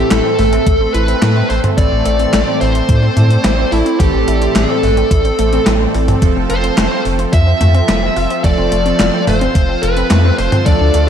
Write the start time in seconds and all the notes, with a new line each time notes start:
Already playing: A2 E3 A3 C4 G4 A4 E5
0.11 A1 E4 A4, snare, clap, closed hi-hat
0.25 C4
0.39 A1 A2 E3 A3 C4 B4, mid tom, open hi-hat
0.53 C4, closed hi-hat
0.67 A1 A3, kick, closed hi-hat
0.80 C4
0.94 A1 E4 B4, closed hi-hat
1.08 C4, closed hi-hat
1.22 A2 A3, snare, clap, closed hi-hat
1.36 C4
1.50 A1 A3 C5, open hi-hat
1.64 C4, closed hi-hat, mid tom
1.77 A1 A2 E3 A3 C4 E4 A4 D5, kick, closed hi-hat
1.92 A1 C4
2.05 A1 A3, closed hi-hat
2.19 C4, closed hi-hat
2.33 A1 A3, snare, clap, closed hi-hat
2.47 C4
2.61 A1 A2 E3 A3 C4 E4 B4 C5, open hi-hat
2.75 C4, closed hi-hat
2.89 A2 A3, kick, closed hi-hat
3.03 C4
3.16 A2 A3, closed hi-hat, mid tom
3.30 C4, closed hi-hat
3.44 A1 E4, snare, clap, closed hi-hat
3.58 C4
3.72 A1 A3 E4, open hi-hat
3.86 C4, closed hi-hat
4.00 A1 A2 E3 A3 C4 G4 A4, kick, closed hi-hat
4.14 A1 C4
4.28 A1 E4, closed hi-hat
4.42 C4, closed hi-hat
4.55 A1 A3 A4, snare, clap, closed hi-hat
4.69 C4
4.83 A1 A2 E3 A3 C4 B4, mid tom, open hi-hat
4.97 C4, closed hi-hat
5.11 A1 E4, kick, closed hi-hat
5.25 C4, closed hi-hat
5.39 A1 A3, closed hi-hat
5.53 A2 E3 A3 C4 A4, closed hi-hat
5.67 A1 A3, snare, clap, closed hi-hat
5.80 C4
5.94 A1 E4, open hi-hat
6.08 C4, closed hi-hat, mid tom
6.22 F1 F3 A3 C4 F4 A4, kick, closed hi-hat
6.36 F1 C4
6.50 F1 F4 C5, closed hi-hat
6.63 C4, closed hi-hat
6.77 F1 A3, snare, clap, closed hi-hat
6.91 C4
7.05 F1 F3 A3 C4 C5, open hi-hat
7.19 C4, closed hi-hat
7.33 F2 F4 E5, kick, closed hi-hat
7.47 C4
7.61 F2 A3, closed hi-hat, mid tom
7.74 C4, closed hi-hat
7.88 F1 A3, snare, clap, closed hi-hat
8.03 C4
8.16 F1 F4, open hi-hat
8.30 C4, closed hi-hat
8.44 F1 F3 A3 C4 A4 D5, kick, closed hi-hat
8.58 F1 C4
8.72 F1 A3, closed hi-hat
8.86 C4, closed hi-hat
9.00 F1 F4, snare, clap, closed hi-hat
9.13 C4
9.27 F1 F3 A3 C4 C5, mid tom, open hi-hat
9.41 C4, closed hi-hat
9.55 F1 A3, kick, closed hi-hat
9.69 C4
9.83 F1 F4 B4, closed hi-hat
9.97 C4, closed hi-hat
10.11 F2 A3, snare, clap, closed hi-hat
10.25 C4
10.38 F1 A3 C5, open hi-hat
10.52 C4, closed hi-hat, mid tom
10.66 D2 D3 F3 A3 D4 F4 A4 D5, kick, closed hi-hat
10.80 D2 D4
10.94 D2 A3, closed hi-hat